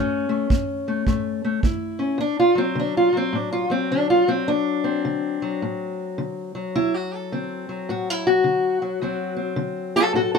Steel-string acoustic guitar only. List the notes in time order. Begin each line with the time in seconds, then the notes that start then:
Already playing: A2 A3 C#4
0.29 A3
0.51 A3
0.88 A3
1.07 A2 A3
1.44 A3
1.64 A3 E4
1.99 C#4
2.18 D2 D4
2.40 F4
2.55 F#3 C4
2.75 D3
2.80 D4
2.97 F4
3.13 F#3
3.17 C4
3.33 A2 D4
3.52 F4
3.70 F#3 C4
3.91 D3 D4
4.10 F4
4.28 F#3 C4
4.48 D2 D4
4.84 C4
5.05 D3
5.42 F#3
5.62 A2
6.18 D3
6.55 F#3
6.75 D2 E4
6.94 F#4
7.15 A4
7.32 D3 C4
7.69 F#3
7.89 A2 F#4
8.10 E4
8.27 F#4
8.44 D3
8.82 F#3
9.01 D2 F#3 C4
9.37 C4
9.56 D3
9.96 F#4 A4
10.14 A2 F#4 A4
10.34 F#4 A4